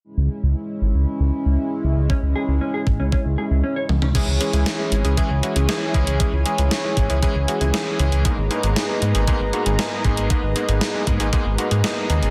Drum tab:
CC |----------------|----------------|x---------------|----------------|
HH |----------------|----------------|x-xxx-xxx-xxx-xx|x-xxx-xxx-xxx-xx|
SD |----------------|----------------|----o-------o---|----o-------o---|
T1 |----------------|--------------o-|----------------|----------------|
T2 |----------------|---------------o|----------------|----------------|
BD |----------------|o-----o-o-------|o-------o-----o-|o-----o-o-------|

CC |----------------|----------------|
HH |x-xxx-xxx-xxx-xx|x-xxx-xxx-xxx-xx|
SD |----o-------o---|----o-------o---|
T1 |----------------|----------------|
T2 |----------------|----------------|
BD |o-------o-----o-|o-----o-o-------|